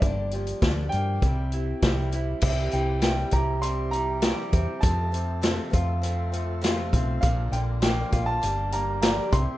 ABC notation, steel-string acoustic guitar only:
X:1
M:4/4
L:1/8
Q:1/4=100
K:Cmix
V:1 name="Steel-string acoustic guitar"
[G,,D,F,B,DG] [F,B,DG] [G,,D,F,B,DG] [F,B,DG] [G,CEG] [CEG] [C,G,CEG] [CEG] | [C,G,CEG] [CEG] [C,G,CEG] [CEG] [G,CEG] [CEG] [C,G,CEG] [CEG] | [F,,C,F,A,CF] [F,A,CF] [F,,C,F,A,CF] [F,A,CF] [F,A,CF] [F,A,CF] [F,,C,F,A,CF] [F,A,CF] | [B,,F,B,DF] [B,DF] [B,,F,B,DF] [B,DF] [G,B,DG] [G,B,DG] [G,,D,G,B,DG] [CEG] |]